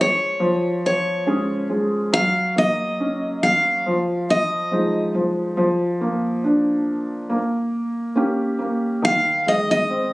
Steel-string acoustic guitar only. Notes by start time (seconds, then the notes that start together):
0.01 C#5
0.86 C#5
2.14 F5
2.58 D#5
3.43 F5
4.30 D#5
9.05 F5
9.48 D#5
9.71 D#5